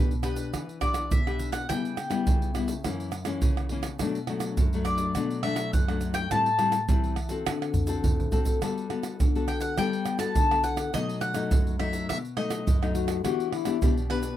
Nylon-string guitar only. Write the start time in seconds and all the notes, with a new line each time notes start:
Already playing: B2 D4 G4 B4
0.23 D4 G4 B4
0.54 E3
0.81 D4 G4 B4
1.11 B2
1.27 D4 G4 B4
1.70 C#3 G3 B3 E4
2.10 G3 B3 E4
2.27 C#3
2.55 G3 B3 E4
2.85 F#2 E3 A#3 C#4
3.26 E3 A#3 C#4
3.42 C#3
3.71 E3 A#3 C#4
4.01 B2 F#3 A3 D4
4.29 F#3 A3 D4
4.59 F#2
4.74 F#3 A3 D4
5.16 B2 F#3 A3 D4
5.44 F#3 A3 D4
5.74 F#2
5.89 F#3 A3 D4
6.31 A2 G3 C4 E4
6.59 G3 C4 E4
6.89 E3 G3 C4 E4
7.30 C4 F#4 A4
7.47 D3
7.88 C4 F#4 A4
8.05 A2
8.32 C4 F#4 A4
8.62 G3 B3 F#4 A4
8.90 B3 F#4 A4
9.20 D3
9.35 B3 F#4 A4
9.78 G3 B3 A4
10.19 B3 F#4 A4
10.36 D3
10.51 B3 F#4 A4
10.93 B2 F#3 A3 D#4
11.35 F#3 A3 D#4
11.52 F#2
11.79 F#3 A3 D#4
12.09 B2
12.37 F#3 A3 D#4
12.67 F#2
12.82 F#3 A3 D#4
13.24 E3 B3 D4 G4
13.66 B3 D4 G4
13.82 B2 B3 D4 G4
14.10 B3 D4 G4